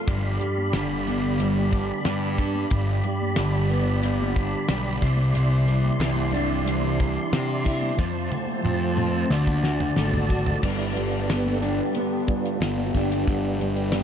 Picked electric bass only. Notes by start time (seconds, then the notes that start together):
0.08 G1
0.74 G1
2.06 G2
2.72 G1
3.38 G1
4.69 B1
5.03 C2
6.00 C2
7.33 C3
7.99 F2
8.65 F2
9.30 D2
9.97 G#1
10.63 G1
12.61 G1
12.94 G1
13.28 G1